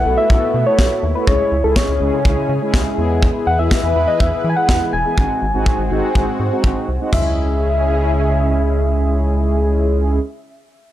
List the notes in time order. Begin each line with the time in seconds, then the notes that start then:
Already playing: A3 B3 E4 F#5
0.05 B1 B3 E4 F#4 A4
0.18 E5
0.30 B1 B3 E4 F#4 A4, kick
0.54 B2
0.66 B3 E4 F#4 A4 C#5
0.79 B1, kick, snare
1.03 D#2
1.15 B3 E4 F#4 A4 B4
1.27 C#2 C#3 G#3 C#4 E4 G#4 C#5, kick
1.52 C#2
1.64 C#2 G#3 C#4 E4 G#4 A4
1.76 C#5, kick, snare
1.88 C#2
2.01 C#2 G#3 C#4 E4 G#4
2.25 C#2 G#3 C#4 E4 G#4, kick
2.49 C#3
2.62 G#3 C#4 E4 G#4
2.74 C#2, kick, snare
2.98 E2 E3 G#3 B3 E4 G#4 B4
3.23 kick
3.47 E2 F#5
3.59 E2 G#3 B3 E4 G#4 E5
3.71 kick, snare
3.83 E2
3.96 E2 G#3 B3 E4 B4
4.08 D#5
4.20 E2 G#3 B3 E4 G#4 E5, kick
4.44 E3
4.50 G#5
4.57 G#3 B3 E4 G#4 F#5
4.69 E2, kick, snare
4.93 E1 G#5
5.05 G#3 B3 E4 G#4
5.18 G#1 G#3 C4 D#4 F#4, kick
5.42 G#1
5.54 G#1 G#3 C4 D#4 F#4
5.66 kick
5.79 G#1
5.91 G#1 G#3 C4 D#4 F#4
6.15 G#1 G#3 C4 D#4 F#4, kick
6.40 G#2
6.52 G#3 C4 D#4 F#4
6.64 G#1, kick
6.88 C2
7.01 G#3 C4 D#4 F#4
7.13 C#2 C#3 G#3 C#4 E4 G#4 E5, kick, floor tom, splash